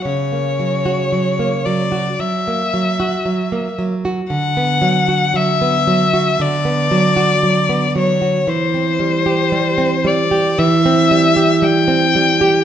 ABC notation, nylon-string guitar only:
X:1
M:4/4
L:1/16
Q:1/4=57
K:Bm
V:1 name="Nylon-string guitar" clef=bass
C, ^A, F, F F, A, F, F F, A, F, F F, A, F, F | D, B, F, F F, B, F, F D, B, F, F F, B, F, F | E, =C G, G G, C G, G E, C G, G G, C G, G |]